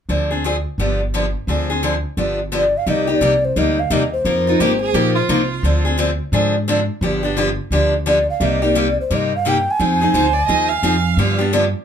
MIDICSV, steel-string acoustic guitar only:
0, 0, Header, 1, 2, 480
1, 0, Start_track
1, 0, Key_signature, -3, "minor"
1, 0, Tempo, 346620
1, 120, Time_signature, 4, 2, 24, 8
1, 16407, End_track
2, 0, Start_track
2, 0, Title_t, "Steel-string acoustic guitar"
2, 0, Program_c, 0, 25
2, 126, Note_on_c, 0, 50, 50
2, 127, Note_on_c, 0, 53, 48
2, 135, Note_on_c, 0, 60, 52
2, 138, Note_on_c, 0, 62, 48
2, 143, Note_on_c, 0, 68, 49
2, 407, Note_off_c, 0, 68, 0
2, 410, Note_off_c, 0, 50, 0
2, 410, Note_off_c, 0, 53, 0
2, 414, Note_off_c, 0, 60, 0
2, 416, Note_off_c, 0, 62, 0
2, 424, Note_on_c, 0, 68, 42
2, 440, Note_on_c, 0, 62, 41
2, 451, Note_on_c, 0, 60, 33
2, 597, Note_off_c, 0, 68, 0
2, 605, Note_off_c, 0, 62, 0
2, 611, Note_off_c, 0, 60, 0
2, 613, Note_on_c, 0, 50, 57
2, 617, Note_on_c, 0, 53, 58
2, 625, Note_on_c, 0, 60, 61
2, 629, Note_on_c, 0, 62, 68
2, 633, Note_on_c, 0, 68, 67
2, 763, Note_off_c, 0, 50, 0
2, 764, Note_off_c, 0, 53, 0
2, 768, Note_off_c, 0, 60, 0
2, 771, Note_off_c, 0, 62, 0
2, 772, Note_off_c, 0, 68, 0
2, 1099, Note_on_c, 0, 50, 53
2, 1103, Note_on_c, 0, 53, 47
2, 1108, Note_on_c, 0, 59, 57
2, 1110, Note_on_c, 0, 62, 51
2, 1116, Note_on_c, 0, 67, 55
2, 1384, Note_off_c, 0, 50, 0
2, 1386, Note_off_c, 0, 53, 0
2, 1388, Note_off_c, 0, 59, 0
2, 1389, Note_off_c, 0, 62, 0
2, 1392, Note_off_c, 0, 67, 0
2, 1576, Note_on_c, 0, 50, 63
2, 1583, Note_on_c, 0, 53, 60
2, 1584, Note_on_c, 0, 59, 61
2, 1589, Note_on_c, 0, 62, 65
2, 1594, Note_on_c, 0, 67, 66
2, 1725, Note_off_c, 0, 50, 0
2, 1729, Note_off_c, 0, 53, 0
2, 1729, Note_off_c, 0, 59, 0
2, 1732, Note_off_c, 0, 62, 0
2, 1734, Note_off_c, 0, 67, 0
2, 2052, Note_on_c, 0, 50, 46
2, 2062, Note_on_c, 0, 53, 50
2, 2063, Note_on_c, 0, 60, 52
2, 2070, Note_on_c, 0, 62, 53
2, 2078, Note_on_c, 0, 68, 51
2, 2334, Note_off_c, 0, 68, 0
2, 2335, Note_off_c, 0, 50, 0
2, 2340, Note_off_c, 0, 53, 0
2, 2341, Note_off_c, 0, 60, 0
2, 2344, Note_off_c, 0, 62, 0
2, 2351, Note_on_c, 0, 68, 50
2, 2367, Note_on_c, 0, 62, 39
2, 2378, Note_on_c, 0, 60, 42
2, 2523, Note_off_c, 0, 60, 0
2, 2523, Note_off_c, 0, 68, 0
2, 2525, Note_off_c, 0, 62, 0
2, 2531, Note_on_c, 0, 50, 71
2, 2535, Note_on_c, 0, 53, 61
2, 2540, Note_on_c, 0, 60, 65
2, 2542, Note_on_c, 0, 62, 71
2, 2549, Note_on_c, 0, 68, 71
2, 2684, Note_off_c, 0, 50, 0
2, 2685, Note_off_c, 0, 53, 0
2, 2688, Note_off_c, 0, 60, 0
2, 2689, Note_off_c, 0, 62, 0
2, 2693, Note_off_c, 0, 68, 0
2, 3008, Note_on_c, 0, 50, 52
2, 3016, Note_on_c, 0, 59, 54
2, 3017, Note_on_c, 0, 53, 52
2, 3023, Note_on_c, 0, 62, 51
2, 3028, Note_on_c, 0, 67, 57
2, 3300, Note_off_c, 0, 50, 0
2, 3304, Note_off_c, 0, 53, 0
2, 3304, Note_off_c, 0, 59, 0
2, 3308, Note_off_c, 0, 62, 0
2, 3310, Note_off_c, 0, 67, 0
2, 3487, Note_on_c, 0, 50, 64
2, 3490, Note_on_c, 0, 53, 65
2, 3493, Note_on_c, 0, 59, 67
2, 3504, Note_on_c, 0, 62, 67
2, 3507, Note_on_c, 0, 67, 74
2, 3642, Note_off_c, 0, 50, 0
2, 3644, Note_off_c, 0, 53, 0
2, 3645, Note_off_c, 0, 59, 0
2, 3650, Note_off_c, 0, 62, 0
2, 3652, Note_off_c, 0, 67, 0
2, 3969, Note_on_c, 0, 48, 52
2, 3975, Note_on_c, 0, 55, 56
2, 3979, Note_on_c, 0, 58, 54
2, 3983, Note_on_c, 0, 63, 54
2, 3987, Note_on_c, 0, 67, 62
2, 4239, Note_off_c, 0, 67, 0
2, 4255, Note_off_c, 0, 48, 0
2, 4256, Note_on_c, 0, 67, 50
2, 4258, Note_off_c, 0, 55, 0
2, 4258, Note_off_c, 0, 63, 0
2, 4260, Note_off_c, 0, 58, 0
2, 4275, Note_on_c, 0, 63, 47
2, 4288, Note_on_c, 0, 58, 39
2, 4436, Note_off_c, 0, 67, 0
2, 4442, Note_off_c, 0, 58, 0
2, 4445, Note_on_c, 0, 48, 69
2, 4446, Note_off_c, 0, 63, 0
2, 4451, Note_on_c, 0, 55, 64
2, 4459, Note_on_c, 0, 58, 74
2, 4465, Note_on_c, 0, 63, 82
2, 4465, Note_on_c, 0, 67, 79
2, 4601, Note_off_c, 0, 48, 0
2, 4605, Note_off_c, 0, 55, 0
2, 4608, Note_off_c, 0, 58, 0
2, 4612, Note_off_c, 0, 63, 0
2, 4612, Note_off_c, 0, 67, 0
2, 4932, Note_on_c, 0, 48, 54
2, 4935, Note_on_c, 0, 55, 60
2, 4940, Note_on_c, 0, 58, 59
2, 4944, Note_on_c, 0, 63, 63
2, 4945, Note_on_c, 0, 67, 59
2, 5222, Note_off_c, 0, 48, 0
2, 5224, Note_off_c, 0, 55, 0
2, 5226, Note_off_c, 0, 58, 0
2, 5228, Note_off_c, 0, 63, 0
2, 5229, Note_off_c, 0, 67, 0
2, 5406, Note_on_c, 0, 55, 67
2, 5409, Note_on_c, 0, 48, 73
2, 5418, Note_on_c, 0, 58, 72
2, 5422, Note_on_c, 0, 63, 72
2, 5428, Note_on_c, 0, 67, 80
2, 5562, Note_off_c, 0, 55, 0
2, 5564, Note_off_c, 0, 48, 0
2, 5568, Note_off_c, 0, 58, 0
2, 5570, Note_off_c, 0, 63, 0
2, 5573, Note_off_c, 0, 67, 0
2, 5888, Note_on_c, 0, 53, 55
2, 5890, Note_on_c, 0, 58, 55
2, 5897, Note_on_c, 0, 63, 54
2, 5904, Note_on_c, 0, 65, 54
2, 5904, Note_on_c, 0, 70, 59
2, 6174, Note_off_c, 0, 53, 0
2, 6175, Note_off_c, 0, 58, 0
2, 6176, Note_off_c, 0, 70, 0
2, 6179, Note_off_c, 0, 63, 0
2, 6182, Note_off_c, 0, 65, 0
2, 6192, Note_on_c, 0, 70, 48
2, 6212, Note_on_c, 0, 65, 46
2, 6223, Note_on_c, 0, 63, 42
2, 6364, Note_off_c, 0, 63, 0
2, 6364, Note_off_c, 0, 70, 0
2, 6371, Note_on_c, 0, 53, 67
2, 6374, Note_off_c, 0, 65, 0
2, 6375, Note_on_c, 0, 58, 77
2, 6381, Note_on_c, 0, 63, 80
2, 6388, Note_on_c, 0, 65, 78
2, 6392, Note_on_c, 0, 70, 82
2, 6524, Note_off_c, 0, 53, 0
2, 6526, Note_off_c, 0, 58, 0
2, 6529, Note_off_c, 0, 63, 0
2, 6533, Note_off_c, 0, 65, 0
2, 6535, Note_off_c, 0, 70, 0
2, 6842, Note_on_c, 0, 53, 54
2, 6846, Note_on_c, 0, 58, 64
2, 6854, Note_on_c, 0, 63, 60
2, 6856, Note_on_c, 0, 65, 61
2, 6861, Note_on_c, 0, 70, 54
2, 7137, Note_off_c, 0, 53, 0
2, 7139, Note_off_c, 0, 58, 0
2, 7143, Note_off_c, 0, 63, 0
2, 7144, Note_off_c, 0, 65, 0
2, 7146, Note_off_c, 0, 70, 0
2, 7325, Note_on_c, 0, 53, 63
2, 7329, Note_on_c, 0, 58, 69
2, 7330, Note_on_c, 0, 63, 74
2, 7338, Note_on_c, 0, 65, 77
2, 7342, Note_on_c, 0, 70, 71
2, 7481, Note_off_c, 0, 53, 0
2, 7483, Note_off_c, 0, 58, 0
2, 7483, Note_off_c, 0, 63, 0
2, 7487, Note_off_c, 0, 65, 0
2, 7489, Note_off_c, 0, 70, 0
2, 7811, Note_on_c, 0, 50, 51
2, 7817, Note_on_c, 0, 53, 56
2, 7822, Note_on_c, 0, 62, 55
2, 7823, Note_on_c, 0, 60, 54
2, 7831, Note_on_c, 0, 68, 61
2, 8082, Note_off_c, 0, 68, 0
2, 8095, Note_off_c, 0, 50, 0
2, 8098, Note_off_c, 0, 53, 0
2, 8098, Note_on_c, 0, 68, 53
2, 8100, Note_off_c, 0, 62, 0
2, 8101, Note_off_c, 0, 60, 0
2, 8116, Note_on_c, 0, 62, 43
2, 8131, Note_on_c, 0, 60, 43
2, 8272, Note_off_c, 0, 60, 0
2, 8274, Note_off_c, 0, 62, 0
2, 8275, Note_on_c, 0, 50, 69
2, 8277, Note_off_c, 0, 68, 0
2, 8283, Note_on_c, 0, 53, 69
2, 8289, Note_on_c, 0, 60, 82
2, 8291, Note_on_c, 0, 62, 75
2, 8295, Note_on_c, 0, 68, 83
2, 8436, Note_off_c, 0, 50, 0
2, 8440, Note_off_c, 0, 53, 0
2, 8442, Note_off_c, 0, 60, 0
2, 8443, Note_off_c, 0, 62, 0
2, 8445, Note_off_c, 0, 68, 0
2, 8762, Note_on_c, 0, 50, 59
2, 8766, Note_on_c, 0, 53, 60
2, 8774, Note_on_c, 0, 60, 57
2, 8775, Note_on_c, 0, 62, 63
2, 8779, Note_on_c, 0, 68, 59
2, 9056, Note_off_c, 0, 50, 0
2, 9058, Note_off_c, 0, 53, 0
2, 9062, Note_off_c, 0, 60, 0
2, 9062, Note_off_c, 0, 62, 0
2, 9064, Note_off_c, 0, 68, 0
2, 9247, Note_on_c, 0, 50, 66
2, 9249, Note_on_c, 0, 53, 67
2, 9253, Note_on_c, 0, 60, 73
2, 9263, Note_on_c, 0, 62, 81
2, 9266, Note_on_c, 0, 68, 72
2, 9401, Note_off_c, 0, 50, 0
2, 9402, Note_off_c, 0, 53, 0
2, 9404, Note_off_c, 0, 60, 0
2, 9409, Note_off_c, 0, 62, 0
2, 9410, Note_off_c, 0, 68, 0
2, 9725, Note_on_c, 0, 50, 51
2, 9729, Note_on_c, 0, 53, 53
2, 9734, Note_on_c, 0, 59, 49
2, 9740, Note_on_c, 0, 62, 56
2, 9744, Note_on_c, 0, 67, 59
2, 9993, Note_off_c, 0, 67, 0
2, 10010, Note_on_c, 0, 67, 48
2, 10011, Note_off_c, 0, 50, 0
2, 10013, Note_off_c, 0, 53, 0
2, 10014, Note_off_c, 0, 62, 0
2, 10015, Note_off_c, 0, 59, 0
2, 10031, Note_on_c, 0, 62, 45
2, 10041, Note_on_c, 0, 59, 43
2, 10191, Note_off_c, 0, 67, 0
2, 10198, Note_off_c, 0, 59, 0
2, 10201, Note_on_c, 0, 50, 74
2, 10202, Note_off_c, 0, 62, 0
2, 10209, Note_on_c, 0, 53, 74
2, 10215, Note_on_c, 0, 59, 69
2, 10221, Note_on_c, 0, 62, 82
2, 10223, Note_on_c, 0, 67, 81
2, 10358, Note_off_c, 0, 50, 0
2, 10361, Note_off_c, 0, 53, 0
2, 10364, Note_off_c, 0, 59, 0
2, 10367, Note_off_c, 0, 62, 0
2, 10369, Note_off_c, 0, 67, 0
2, 10687, Note_on_c, 0, 50, 58
2, 10693, Note_on_c, 0, 53, 59
2, 10698, Note_on_c, 0, 59, 55
2, 10702, Note_on_c, 0, 62, 65
2, 10705, Note_on_c, 0, 67, 60
2, 10977, Note_off_c, 0, 50, 0
2, 10980, Note_off_c, 0, 53, 0
2, 10983, Note_off_c, 0, 59, 0
2, 10985, Note_off_c, 0, 62, 0
2, 10986, Note_off_c, 0, 67, 0
2, 11161, Note_on_c, 0, 50, 74
2, 11163, Note_on_c, 0, 53, 66
2, 11174, Note_on_c, 0, 62, 69
2, 11176, Note_on_c, 0, 59, 75
2, 11176, Note_on_c, 0, 67, 69
2, 11316, Note_off_c, 0, 50, 0
2, 11318, Note_off_c, 0, 53, 0
2, 11323, Note_off_c, 0, 62, 0
2, 11324, Note_off_c, 0, 59, 0
2, 11324, Note_off_c, 0, 67, 0
2, 11638, Note_on_c, 0, 48, 54
2, 11642, Note_on_c, 0, 55, 57
2, 11646, Note_on_c, 0, 58, 54
2, 11656, Note_on_c, 0, 63, 55
2, 11657, Note_on_c, 0, 67, 54
2, 11919, Note_off_c, 0, 67, 0
2, 11926, Note_off_c, 0, 48, 0
2, 11928, Note_off_c, 0, 55, 0
2, 11930, Note_off_c, 0, 58, 0
2, 11935, Note_off_c, 0, 63, 0
2, 11935, Note_on_c, 0, 67, 51
2, 11951, Note_on_c, 0, 63, 44
2, 11965, Note_on_c, 0, 58, 45
2, 12113, Note_off_c, 0, 67, 0
2, 12116, Note_off_c, 0, 58, 0
2, 12116, Note_off_c, 0, 63, 0
2, 12120, Note_on_c, 0, 48, 72
2, 12124, Note_on_c, 0, 55, 77
2, 12132, Note_on_c, 0, 58, 80
2, 12132, Note_on_c, 0, 63, 77
2, 12134, Note_on_c, 0, 67, 80
2, 12276, Note_off_c, 0, 48, 0
2, 12278, Note_off_c, 0, 55, 0
2, 12282, Note_off_c, 0, 58, 0
2, 12282, Note_off_c, 0, 63, 0
2, 12283, Note_off_c, 0, 67, 0
2, 12609, Note_on_c, 0, 48, 59
2, 12610, Note_on_c, 0, 55, 57
2, 12616, Note_on_c, 0, 58, 60
2, 12623, Note_on_c, 0, 63, 63
2, 12627, Note_on_c, 0, 67, 60
2, 12897, Note_off_c, 0, 48, 0
2, 12897, Note_off_c, 0, 55, 0
2, 12900, Note_off_c, 0, 58, 0
2, 12904, Note_off_c, 0, 63, 0
2, 12906, Note_off_c, 0, 67, 0
2, 13086, Note_on_c, 0, 48, 65
2, 13094, Note_on_c, 0, 55, 74
2, 13099, Note_on_c, 0, 58, 73
2, 13103, Note_on_c, 0, 63, 68
2, 13110, Note_on_c, 0, 67, 82
2, 13238, Note_off_c, 0, 48, 0
2, 13242, Note_off_c, 0, 55, 0
2, 13244, Note_off_c, 0, 58, 0
2, 13246, Note_off_c, 0, 63, 0
2, 13250, Note_off_c, 0, 67, 0
2, 13563, Note_on_c, 0, 53, 52
2, 13577, Note_on_c, 0, 60, 57
2, 13578, Note_on_c, 0, 63, 60
2, 13583, Note_on_c, 0, 68, 61
2, 13847, Note_off_c, 0, 53, 0
2, 13848, Note_off_c, 0, 68, 0
2, 13854, Note_off_c, 0, 60, 0
2, 13855, Note_off_c, 0, 63, 0
2, 13865, Note_on_c, 0, 68, 50
2, 13879, Note_on_c, 0, 63, 45
2, 13891, Note_on_c, 0, 60, 42
2, 14032, Note_off_c, 0, 60, 0
2, 14036, Note_off_c, 0, 68, 0
2, 14042, Note_on_c, 0, 53, 66
2, 14043, Note_off_c, 0, 63, 0
2, 14049, Note_on_c, 0, 60, 68
2, 14058, Note_on_c, 0, 63, 77
2, 14060, Note_on_c, 0, 68, 75
2, 14195, Note_off_c, 0, 53, 0
2, 14199, Note_off_c, 0, 60, 0
2, 14203, Note_off_c, 0, 63, 0
2, 14204, Note_off_c, 0, 68, 0
2, 14513, Note_on_c, 0, 53, 58
2, 14521, Note_on_c, 0, 60, 57
2, 14525, Note_on_c, 0, 63, 57
2, 14532, Note_on_c, 0, 68, 68
2, 14808, Note_off_c, 0, 53, 0
2, 14812, Note_off_c, 0, 60, 0
2, 14814, Note_off_c, 0, 63, 0
2, 14817, Note_off_c, 0, 68, 0
2, 14999, Note_on_c, 0, 53, 67
2, 15002, Note_on_c, 0, 60, 76
2, 15008, Note_on_c, 0, 63, 76
2, 15017, Note_on_c, 0, 68, 80
2, 15153, Note_off_c, 0, 53, 0
2, 15155, Note_off_c, 0, 60, 0
2, 15158, Note_off_c, 0, 63, 0
2, 15162, Note_off_c, 0, 68, 0
2, 15487, Note_on_c, 0, 50, 51
2, 15492, Note_on_c, 0, 53, 58
2, 15492, Note_on_c, 0, 59, 60
2, 15496, Note_on_c, 0, 62, 59
2, 15506, Note_on_c, 0, 67, 57
2, 15750, Note_off_c, 0, 67, 0
2, 15767, Note_on_c, 0, 67, 52
2, 15768, Note_off_c, 0, 50, 0
2, 15770, Note_off_c, 0, 59, 0
2, 15771, Note_off_c, 0, 53, 0
2, 15773, Note_off_c, 0, 62, 0
2, 15787, Note_on_c, 0, 62, 43
2, 15803, Note_on_c, 0, 59, 43
2, 15946, Note_off_c, 0, 67, 0
2, 15953, Note_off_c, 0, 59, 0
2, 15956, Note_off_c, 0, 62, 0
2, 15963, Note_on_c, 0, 50, 79
2, 15968, Note_on_c, 0, 53, 79
2, 15970, Note_on_c, 0, 59, 74
2, 15973, Note_on_c, 0, 62, 78
2, 15982, Note_on_c, 0, 67, 85
2, 16114, Note_off_c, 0, 50, 0
2, 16117, Note_off_c, 0, 53, 0
2, 16118, Note_off_c, 0, 59, 0
2, 16120, Note_off_c, 0, 62, 0
2, 16124, Note_off_c, 0, 67, 0
2, 16407, End_track
0, 0, End_of_file